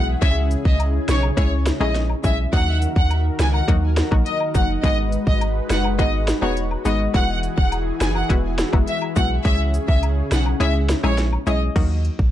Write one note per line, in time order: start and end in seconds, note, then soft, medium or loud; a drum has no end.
0.00 0.16 B1 medium
0.00 0.20 E3 medium
0.00 0.14 G#3 medium
0.00 0.14 B3 medium
0.00 0.15 E4 medium
0.00 2.49 E4 medium
0.00 0.15 F#4 medium
0.00 0.18 F#4 medium
0.00 2.49 G#4 medium
0.22 0.56 C#2 loud
0.22 2.50 C#3 medium
0.22 0.75 G#3 loud
0.22 0.75 C#4 medium
0.22 2.50 C#4 medium
0.22 0.75 E4 medium
0.22 0.75 G#4 loud
0.22 0.32 E5 loud
0.22 kick loud
0.22 closed hi-hat medium
0.51 closed hi-hat medium
0.51 cabasa medium
0.65 0.99 C#2 medium
0.65 0.75 D#5 medium
0.65 kick medium
0.80 closed hi-hat medium
0.80 high woodblock medium
1.08 1.31 B1 medium
1.08 1.19 C#5 medium
1.08 cross-stick medium
1.08 snare loud
1.08 closed hi-hat medium
1.08 cabasa medium
1.23 high woodblock medium
1.37 1.71 C#2 loud
1.37 1.58 G#3 loud
1.37 1.59 C#4 medium
1.37 1.59 E4 medium
1.37 1.59 G#4 loud
1.37 1.48 C#5 medium
1.37 kick medium
1.37 closed hi-hat medium
1.66 cross-stick medium
1.66 snare loud
1.66 closed hi-hat soft
1.66 cabasa medium
1.80 2.15 A#1 medium
1.80 2.02 G#3 medium
1.80 2.02 C#4 medium
1.80 2.02 E4 medium
1.80 2.02 G#4 medium
1.80 1.91 D#5 medium
1.80 cross-stick medium
1.80 high woodblock medium
1.95 snare medium
1.95 closed hi-hat medium
2.10 high woodblock medium
2.24 2.47 B1 medium
2.24 2.45 G#3 medium
2.24 2.45 C#4 medium
2.24 2.45 E4 medium
2.24 2.45 G#4 medium
2.24 2.34 E5 medium
2.24 kick medium
2.24 closed hi-hat medium
2.24 cabasa medium
2.53 2.87 D#2 loud
2.53 4.81 D#3 medium
2.53 3.06 F#3 medium
2.53 3.06 A#3 medium
2.53 7.10 D#4 medium
2.53 3.06 D#4 medium
2.53 9.41 F#4 medium
2.53 3.06 F#4 loud
2.53 4.81 A#4 medium
2.53 2.73 F#5 loud
2.53 kick loud
2.53 closed hi-hat medium
2.82 closed hi-hat medium
2.82 cabasa medium
2.96 3.30 D#2 loud
2.96 3.06 F#5 medium
2.96 kick medium
3.10 closed hi-hat medium
3.10 high woodblock medium
3.39 3.62 C#2 loud
3.39 3.50 G#5 medium
3.39 cross-stick medium
3.39 snare loud
3.39 closed hi-hat medium
3.39 cabasa medium
3.54 3.64 F#5 medium
3.54 high woodblock medium
3.68 4.02 D#2 loud
3.68 3.89 F#3 loud
3.68 3.89 A#3 medium
3.68 3.90 D#4 medium
3.68 3.90 F#4 loud
3.68 kick medium
3.68 closed hi-hat medium
3.97 cross-stick medium
3.97 snare loud
3.97 closed hi-hat medium
3.97 cabasa medium
4.11 4.23 A#1 medium
4.11 4.33 F#3 medium
4.11 4.33 A#3 medium
4.11 4.33 D#4 medium
4.11 4.33 F#4 medium
4.11 kick loud
4.11 high woodblock medium
4.26 4.36 D#5 medium
4.26 closed hi-hat medium
4.40 high woodblock medium
4.54 4.78 F#1 medium
4.54 4.76 F#3 medium
4.54 4.76 A#3 medium
4.54 4.76 D#4 medium
4.54 4.76 F#4 medium
4.54 4.65 F#5 medium
4.54 kick medium
4.54 closed hi-hat medium
4.54 cabasa medium
4.83 5.18 G#1 loud
4.83 5.37 G#3 medium
4.83 7.12 G#3 medium
4.83 5.37 B3 medium
4.83 5.37 D#4 medium
4.83 5.37 F#4 loud
4.83 7.12 B4 medium
4.83 4.94 D#5 loud
4.83 kick loud
4.83 closed hi-hat medium
5.12 closed hi-hat medium
5.12 cabasa medium
5.27 5.61 G#1 medium
5.27 5.37 D#5 medium
5.27 kick medium
5.41 closed hi-hat medium
5.41 high woodblock medium
5.70 6.01 F#1 loud
5.70 5.80 F#5 medium
5.70 cross-stick medium
5.70 snare loud
5.70 closed hi-hat medium
5.70 cabasa medium
5.84 high woodblock medium
5.99 6.33 G#1 loud
5.99 6.20 G#3 loud
5.99 6.20 B3 medium
5.99 6.20 D#4 medium
5.99 6.20 F#4 loud
5.99 6.09 D#5 medium
5.99 kick medium
5.99 closed hi-hat medium
6.28 cross-stick medium
6.28 snare loud
6.28 closed hi-hat medium
6.28 cabasa medium
6.42 6.76 E1 medium
6.42 6.63 G#3 medium
6.42 6.64 B3 medium
6.42 6.64 D#4 medium
6.42 6.64 F#4 medium
6.42 6.53 C#5 medium
6.42 high woodblock medium
6.57 closed hi-hat medium
6.71 high woodblock medium
6.85 7.08 G#1 loud
6.85 7.07 G#3 medium
6.85 7.07 B3 medium
6.85 7.07 D#4 medium
6.85 7.07 F#4 medium
6.85 6.96 D#5 medium
6.85 closed hi-hat medium
6.85 cabasa medium
7.14 7.48 E1 loud
7.14 9.43 E3 medium
7.14 7.67 G#3 loud
7.14 7.67 B3 medium
7.14 7.67 E4 medium
7.14 11.72 E4 medium
7.14 7.68 F#4 loud
7.14 9.43 G#4 medium
7.14 7.35 F#5 loud
7.14 kick loud
7.14 closed hi-hat medium
7.43 closed hi-hat medium
7.43 cabasa medium
7.58 7.92 E1 loud
7.58 7.68 F#5 medium
7.58 kick medium
7.72 closed hi-hat medium
7.72 high woodblock medium
8.01 8.23 F#1 loud
8.01 8.11 G#5 medium
8.01 cross-stick medium
8.01 snare loud
8.01 closed hi-hat medium
8.01 cabasa medium
8.15 8.26 F#5 medium
8.15 high woodblock medium
8.29 8.64 E1 loud
8.29 8.51 G#3 loud
8.29 8.51 B3 medium
8.29 8.51 E4 medium
8.29 8.51 F#4 loud
8.29 kick medium
8.29 closed hi-hat medium
8.58 cross-stick medium
8.58 snare loud
8.58 closed hi-hat medium
8.58 cabasa medium
8.73 8.85 F#1 medium
8.73 8.94 G#3 medium
8.73 8.94 B3 medium
8.73 8.94 E4 medium
8.73 8.94 F#4 medium
8.73 kick loud
8.73 high woodblock medium
8.87 8.98 E5 medium
8.87 closed hi-hat medium
9.02 high woodblock medium
9.16 9.39 B1 medium
9.16 9.37 G#3 medium
9.16 9.38 B3 medium
9.16 9.38 E4 medium
9.16 9.38 F#4 medium
9.16 9.26 F#5 medium
9.16 kick medium
9.16 closed hi-hat medium
9.16 cabasa medium
9.45 9.79 C#2 loud
9.45 11.74 C#3 medium
9.45 9.98 G#3 loud
9.45 9.98 C#4 medium
9.45 11.74 C#4 medium
9.45 9.98 E4 medium
9.45 11.74 G#4 medium
9.45 9.98 G#4 loud
9.45 9.55 E5 loud
9.45 kick loud
9.45 closed hi-hat medium
9.74 closed hi-hat medium
9.74 cabasa medium
9.88 10.22 C#2 medium
9.88 9.98 E5 medium
9.88 kick medium
10.03 closed hi-hat medium
10.03 high woodblock medium
10.31 10.54 B1 loud
10.31 10.42 F#5 medium
10.31 cross-stick medium
10.31 snare loud
10.31 closed hi-hat medium
10.31 cabasa medium
10.46 high woodblock medium
10.60 10.94 C#2 loud
10.60 10.82 G#3 medium
10.60 10.82 C#4 medium
10.60 10.82 E4 medium
10.60 10.82 G#4 loud
10.60 10.71 E5 medium
10.60 closed hi-hat medium
10.89 cross-stick medium
10.89 snare loud
10.89 closed hi-hat soft
10.89 cabasa medium
11.03 11.38 A#1 loud
11.03 11.25 G#3 medium
11.03 11.25 C#4 medium
11.03 11.25 E4 medium
11.03 11.25 G#4 medium
11.03 11.14 C#5 medium
11.03 cross-stick medium
11.03 high woodblock medium
11.18 snare medium
11.18 closed hi-hat medium
11.33 high woodblock medium
11.47 11.70 B1 medium
11.47 11.68 G#3 medium
11.47 11.68 C#4 medium
11.47 11.68 E4 medium
11.47 11.68 G#4 medium
11.47 11.57 D#5 medium
11.47 closed hi-hat medium
11.47 cabasa medium
11.75 12.10 D#2 loud
11.75 12.29 F#3 loud
11.75 12.29 A#3 medium
11.75 12.29 D#4 medium
11.75 12.29 F#4 loud
11.75 kick loud
11.75 closed hi-hat medium
11.75 crash medium
12.05 closed hi-hat medium
12.19 12.31 A#1 medium
12.19 kick medium